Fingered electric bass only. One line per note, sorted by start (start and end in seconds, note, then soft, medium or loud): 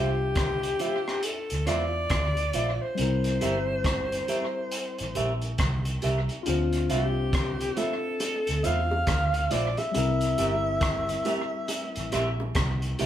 0.00 0.71 C2 medium
1.52 1.68 D2 medium
1.68 2.06 E2 medium
2.11 2.50 D2 medium
2.55 2.79 A#1 medium
2.99 3.37 C2 medium
3.43 4.20 G1 medium
5.01 5.15 A1 medium
5.17 5.55 A#1 medium
5.60 5.98 C2 medium
6.04 6.27 C2 medium
6.48 6.86 D2 loud
6.92 7.68 C2 medium
8.49 8.63 D2 medium
8.66 9.04 E2 medium
9.08 9.46 D2 medium
9.52 9.76 A#1 medium
9.96 10.34 C2 medium
10.40 11.16 G1 medium
11.97 12.11 A1 medium
12.13 12.51 A#1 medium
12.56 12.95 C2 medium
13.01 13.06 C2 medium